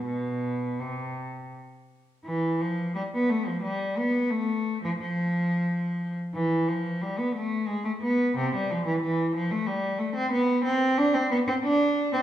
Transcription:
0.06 B2
0.80 C3
2.25 E3
2.61 F3
2.95 G3
3.14 B3
3.30 A3
3.47 F3
3.63 G3
3.98 B3
4.31 A3
4.83 F3
4.99 F3
6.34 E3
6.68 F3
7.02 G3
7.19 B3
7.35 A3
7.67 G#3
7.85 A3
8.02 B3
8.37 C3
8.55 G3
8.71 F3
8.86 E3
9.02 E3
9.35 F3
9.51 A3
9.67 G3
9.99 A3
10.16 C4
10.32 B3
10.64 C4
10.98 D4
11.15 C4
11.31 B3
11.48 C4
11.64 D4
12.13 C4

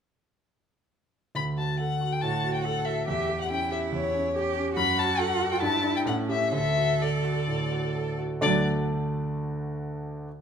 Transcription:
1.35 D2 B5
1.57 F#4 A5
1.79 A4 F#5
2.01 F#4
2.12 G5
2.21 A2 F#4 A5
2.44 F#4
2.54 G5
2.64 A4 F#5
2.85 F#4 E5
3.07 E2 G4 E5
3.29 G4
3.40 F#5
3.50 C#4 E4 G5
3.71 G4 E5
3.92 E2 C#5
4.14 C#4
4.35 G4
4.56 C#4
4.76 F#2 F#4 B5
4.98 F#4 A5
5.19 A4 F#5
5.40 F#4
5.52 G5
5.60 G2 E4 A5
5.83 D4 E4
5.96 G5
6.05 A2 C#4 F#5
6.28 C#4 G4 E5
6.52 D2 A4 E5
6.77 F#4
7.01 A4 D5
7.24 F#4
7.48 A2
7.72 F#4
7.95 A4
8.19 F#4
8.41 D2 D3 F#3 A3 D4 F#4 D5

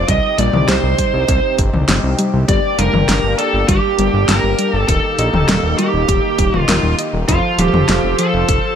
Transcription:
0.08 C2 C3 G3 C4 D#4 G4 D#5, kick, closed hi-hat
0.38 A#1 G3 D5, closed hi-hat
0.53 C2, mid tom
0.68 C2 G4 C5, snare, closed hi-hat
0.83 C2
0.98 G3, kick, closed hi-hat
1.14 C2
1.28 C2 C5, kick, closed hi-hat
1.58 G1 D#5, kick, closed hi-hat
1.74 C2, mid tom
1.88 G1 G3, snare, closed hi-hat
2.04 C2
2.19 G3, closed hi-hat
2.34 C2
2.48 G1 A#3 D4 G4 D5, kick, closed hi-hat
2.78 F1 G3 A#4, closed hi-hat
2.94 G1, mid tom
3.09 G1 A#4, snare, closed hi-hat
3.24 G1
3.38 A4 D5, closed hi-hat
3.54 G1
3.68 G1 G3 G4, kick, closed hi-hat
3.99 G1 G3, closed hi-hat
4.14 G1
4.28 G1 G4 A#4, snare, closed hi-hat
4.44 G1
4.59 G3, closed hi-hat
4.72 G1 A4
4.88 D#1 D#3 A#3 D#4 A4 A#4, kick, closed hi-hat
5.18 A#1 D#5, closed hi-hat
5.33 D#1, mid tom
5.48 D#1 G3, snare, closed hi-hat
5.63 D#1
5.78 G3 G4, closed hi-hat
5.94 D#1
6.08 D#1 G4, kick, closed hi-hat
6.38 D#1 G3, kick, closed hi-hat
6.53 D#1, mid tom
6.58 F4
6.68 D#1 A#4, snare, closed hi-hat
6.83 D#1
6.99 D#5, closed hi-hat
7.13 D#1
7.28 F1 F3 F4 A4 C5, kick, closed hi-hat
7.58 D#1 F3 G4, closed hi-hat
7.74 F1, mid tom
7.89 F1 F4, snare, closed hi-hat
8.04 F1
8.19 F3 A4, closed hi-hat
8.34 F1
8.49 F1 A4, kick, closed hi-hat

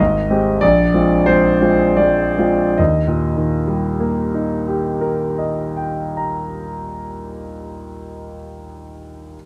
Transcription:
0.00 G#1 D#5
0.30 G#3 C4 G4
0.61 A#1 D5
0.94 G#3 C4 F4
1.26 G#3 C4 F4 C5
1.61 G#3 C4 F4
1.97 G#3 C4 F4 D5
2.38 G#3 C4 F4
2.78 D#2 D#5
3.07 A#2
3.36 D#3
3.67 G3
4.00 A#3
4.34 D#4
4.68 G4
5.01 A#4
5.38 D#5
5.77 G5
6.17 A#5

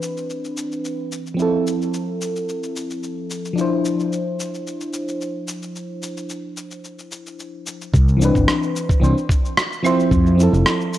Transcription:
Already playing: E3 C4 D4 B4
0.02 cabasa
0.17 cabasa
0.30 cabasa
0.44 cabasa
0.57 cabasa
0.72 cabasa
0.85 cabasa
1.12 cabasa
1.26 cabasa
1.34 F3 C4
1.39 E4 A4, cabasa
1.66 cabasa
1.81 cabasa
1.93 cabasa
2.21 cabasa
2.36 cabasa
2.49 cabasa
2.63 cabasa
2.76 cabasa
2.91 cabasa
3.03 cabasa
3.31 cabasa
3.45 cabasa
3.53 F3 D4
3.58 E4 C5, cabasa
3.85 cabasa
4.00 cabasa
4.12 cabasa
4.40 cabasa
4.54 cabasa
4.67 cabasa
4.81 cabasa
4.93 cabasa
5.08 cabasa
5.21 cabasa
5.48 cabasa
5.63 cabasa
5.76 cabasa
6.03 cabasa
6.17 cabasa
6.30 cabasa
6.57 cabasa
6.71 cabasa
6.84 cabasa
6.99 cabasa
7.12 cabasa
7.26 cabasa
7.39 cabasa
7.66 cabasa
7.81 cabasa
7.93 C2, kick, cabasa
8.08 cabasa
8.17 E3 C4
8.21 D4 B4, cabasa
8.35 G1, kick, cabasa
8.48 cross-stick, cabasa
8.63 cabasa
8.76 cabasa
8.90 kick, cabasa
9.00 C2 E3 C4 D4 C5, cabasa
9.18 cabasa
9.30 kick, cabasa
9.46 cabasa
9.58 cross-stick, cabasa
9.73 cabasa
9.83 F3 C4 E4 C5, cabasa, claves
10.00 cabasa
10.11 F2, kick, cabasa
10.26 cabasa
10.35 F3 C4
10.40 E4 A4, cabasa
10.53 F1, cabasa
10.66 cross-stick, cabasa
10.81 cabasa
10.93 cabasa

